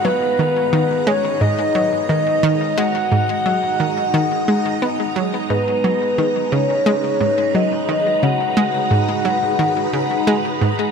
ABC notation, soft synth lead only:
X:1
M:4/4
L:1/8
Q:1/4=88
K:G#m
V:1 name="Soft synth lead"
B3 c d2 d2 | f6 z2 | B3 c3 d2 | f6- f z |]